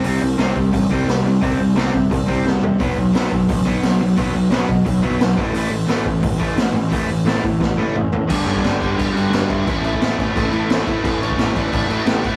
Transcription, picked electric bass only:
\new Staff \with { instrumentName = "Picked electric bass" } { \clef bass \time 4/4 \key a \mixolydian \tempo 4 = 175 c,8 c,8 c,8 c,8 a,,8 c,8 c,8 c,8 | c,8 c,8 c,8 c8 c,8 c,8 c,8 c8 | b,,8 b,,8 b,,8 b,,8 a,,8 b,,8 b,,8 b,,8 | b,,8 b,,8 b,,8 b,8 b,,8 b,,8 b,,8 a,,8 |
a,,8 a,,8 a,,8 a,,8 g,,8 a,,8 a,,8 a,,8 | a,,8 a,,8 a,,8 a,8 a,,8 a,,8 a,,8 a,8 | g,,8 g,,8 g,,8 g,,8 g,,8 g,8 g,,8 g,8 | a,,8 a,,8 a,,8 a,,8 a,,8 a,8 a,,8 a,8 |
a,,8 a,,8 a,,8 a,,8 a,,8 a,8 a,,8 a,8 | }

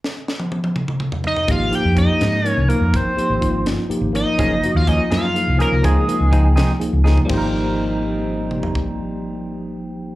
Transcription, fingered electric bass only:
\new Staff \with { instrumentName = "Fingered electric bass" } { \clef bass \time 6/8 \key aes \major \tempo 4. = 83 r2. | aes,,8 r16 f,8 r16 aes,8. c,16 r16 f,16 | aes,,16 r8 aes,,8. g,,16 r8 aes,,8 r16 | ges,,8 r16 ees,8 r16 ges,8. c,16 r16 c,16 |
des,16 r8 des,8. c,16 r8 des,8 r16 | aes,,2.~ | aes,,2. | }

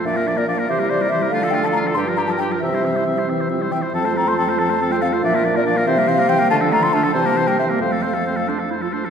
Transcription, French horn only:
\new Staff \with { instrumentName = "French horn" } { \clef bass \time 6/8 \key f \major \tempo 4. = 93 f16 bes16 f16 bes16 f16 bes16 e16 g16 e16 g16 e16 g16 | a16 f16 a16 f16 a16 f16 g16 f16 g16 f16 g16 f16 | e16 g16 e16 g16 e16 g16 e8 f16 g16 e8 | f16 a16 f16 a16 f16 a16 f16 a16 f16 a16 f16 a16 |
f16 bes16 f16 bes16 f16 bes16 e16 g16 e16 g16 e16 g16 | d16 f16 d16 f16 d16 f16 e16 g16 e16 g16 e16 g16 | a16 f16 a16 f16 a16 f16 a16 f16 a16 f16 a16 f16 | }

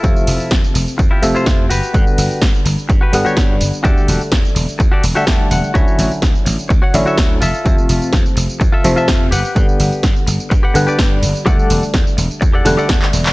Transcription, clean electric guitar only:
\new Staff \with { instrumentName = "Clean electric guitar" } { \time 4/4 \key g \lydian \tempo 4 = 126 <e' f' a'>4 r4 r16 <e' f' g'>16 r16 <e' f' c''>8. <fis' g' b'>8~ | <fis' g' b'>4 r4 r16 <fis' g' b'>16 r16 <fis' g' cis''>8. r8 | <fis' g' a' d''>8. r4. <fis' g' a' d''>16 r16 <fis' g' a' e''>8. fis''8 | <fis' cis'' e''>8. r4. <fis' cis'' fis''>16 r16 <fis' cis'' e''>8. <f' a' e''>8~ |
<f' a' e''>4 r4 r16 <f' a' e''>16 r16 <f' a' e''>8. <g' b' fis''>8~ | <g' b' fis''>4 r4 r16 <g' b' fis''>16 r16 <g' b' d''>8. r8 | <g' a' d'' fis''>8. r4. <g' a' d'' fis''>16 r16 <g' a' d'' fis''>8. r8 | }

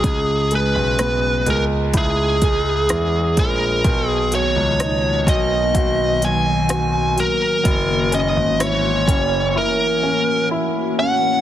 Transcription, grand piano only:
\new Staff \with { instrumentName = "Grand piano" } { \clef bass \time 4/4 \key b \major \tempo 4 = 63 cis,8. b,,8. cis,8 cis,4 e,8 ais,,8 | b,,8. cis,8. b,,8 b,,4. r8 | fis,,8. gis,,8. fis,,8 r2 | }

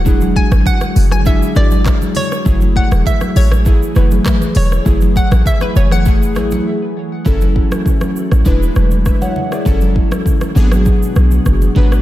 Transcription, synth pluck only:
\new Staff \with { instrumentName = "Synth pluck" } { \time 4/4 \key fis \minor \tempo 4 = 100 fis''8 gis''8 fis''8. gis''16 e''8 d''4 cis''8~ | cis''8 fis''8 e''8 cis''2 cis''8~ | cis''8 fis''8 e''16 b'16 cis''16 fis''4~ fis''16 r4 | r1 |
r1 | }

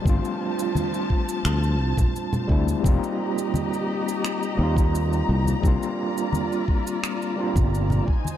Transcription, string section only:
\new Staff \with { instrumentName = "String section" } { \time 4/4 \key c \dorian \tempo 4 = 86 << { a''1 | bes''1~ | bes''2.~ bes''8 aes''8 | } \\ { <f c''>1 | <g' ees''>1 | <f' d''>2.~ <f' d''>8 <ees' c''>8 | } >> }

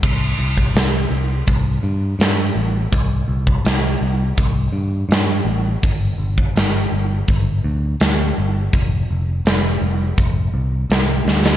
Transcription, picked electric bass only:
\new Staff \with { instrumentName = "Picked electric bass" } { \clef bass \time 4/4 \key g \mixolydian \tempo 4 = 83 c,8 c,8 c,8 c,8 c,8 g,8 g,8 a,,8 | c,8 c,8 c,8 c,8 c,8 g,8 g,8 a,,8 | g,,8 g,,8 g,,8 g,,8 g,,8 d,8 d,8 g,,8 | f,,8 f,,8 f,,8 f,,8 f,,8 c,8 c,8 d,8 | }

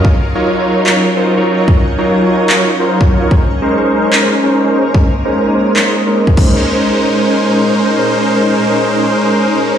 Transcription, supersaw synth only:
\new Staff \with { instrumentName = "Supersaw synth" } { \time 4/4 \key bes \minor \tempo 4 = 147 <ges ees' f' bes' des''>16 r8 <ges ees' f' bes' des''>4. <ges ees' f' bes' des''>16 r16 <ges ees' f' bes' c''>8 <ges ees' f' bes' des''>8. | r8. <ges ees' f' bes' des''>4. <ges ees' f' bes' des''>16 r16 <ges ees' f' bes' c''>8 <ges ees' f' des''>8. | <aes des' ees' bes' c''>16 r8 <aes des' ees' bes' c''>4. <aes des' ees' bes' c''>16 r16 <aes des' ees' bes' c''>8 <aes des' ees' bes' c''>8. | <aes des' ees' bes' c''>16 r8 <aes des' ees' bes' c''>4. <aes des' ees' bes' c''>16 r16 <aes des' ees' bes' c''>8 <aes des' bes' c''>16 <aes des' ees' bes' c''>8~ |
<aes des' ees' bes' c''>1~ | <aes des' ees' bes' c''>1 | }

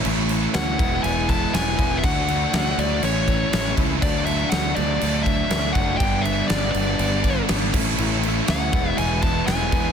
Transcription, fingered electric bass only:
\new Staff \with { instrumentName = "Fingered electric bass" } { \clef bass \time 4/4 \key d \lydian \tempo 4 = 121 a,,4 d,8 e,,8 e,,4 e,,8 e,,8 | d,4 d,8 d,8 a,,4 a,,8 cis,8 | d,4 d,8 d,8 d,4 d,8 fis,,8 | g,,4 g,,8 g,,8 g,,4 gis,,8 a,,8 |
a,,4 d,8 e,,8 e,,4 e,,8 e,8 | }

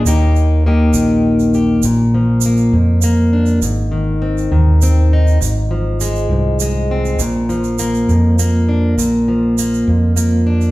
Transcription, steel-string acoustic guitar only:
\new Staff \with { instrumentName = "Steel-string acoustic guitar" } { \time 6/8 \key bes \mixolydian \tempo 4. = 67 << { <bes ees' g'>4 <bes ees' g'>4. g'8 | r4 bes4 bes8 d'8 | r4 c'4 c'8 ees'8 | r4 aes4 aes8 c'8 |
r4 bes4 bes8 d'8 | r4 bes4 bes8 d'8 | } \\ { ees,4. ees4. | bes,8 f4 f,4. | aes,8 ees4 ees4. | aes,8 f4 aes,4. |
bes,8 f4 f,4. | bes,8 f4 f,4. | } >> }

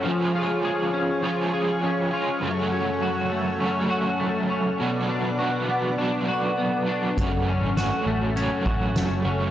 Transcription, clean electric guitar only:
\new Staff \with { instrumentName = "Clean electric guitar" } { \time 4/4 \key fis \minor \tempo 4 = 101 eis8 eis'8 gis'8 cis'8 eis'8 gis'8 cis'8 eis'8 | fis,8 cis'8 fis'8 a8 cis'8 fis'8 a8 cis'8 | b,8 d'8 fis'8 b8 d'8 fis'8 b8 d'8 | fis,8 cis'8 fis'8 a8 cis'8 fis'8 a8 cis'8 | }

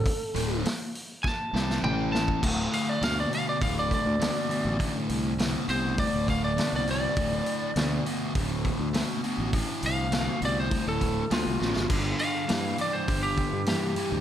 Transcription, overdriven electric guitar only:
\new Staff \with { instrumentName = "Overdriven electric guitar" } { \clef bass \time 4/4 \key d \minor \tempo 4 = 101 r8 <d, a, d>8 r4. <c g c'>8 <a, e a>4 | <d, a,>4 <d, b,>8 <d, b,>8 <d, a,>4 <d, b,>8 <d, b,>8 | <d, a,>4 <d, b,>8 <d, b,>8 <d, a,>4 <d, b,>8 <d, b,>8 | <d, a,>4 <d, b,>8 <d, b,>8 <d, a,>4 <d, b,>8 <d, b,>8 |
<d, a,>4 <d, b,>8 <d, b,>8 <d, a,>4 <d, b,>8 <d, b,>8 | <g, d>4 <g, e>8 <g, e>8 <g, d>4 <g, e>8 <g, e>8 | }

